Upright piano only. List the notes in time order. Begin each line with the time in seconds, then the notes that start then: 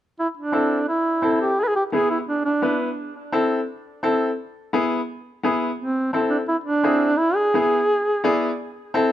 0.52 C4 E4 A4
1.22 C4 E4 A4
1.92 B3 E4 G#4
2.62 B3 E4 B4
3.32 C4 E4 A4
4.03 C4 E4 A4
4.73 B3 E4 G#4
5.43 B3 E4 G#4
6.13 C4 E4 A4
6.83 C4 E4 G#4
7.54 B3 E4 G#4
8.24 B3 E4 G#4 D5
8.94 C4 E4 A4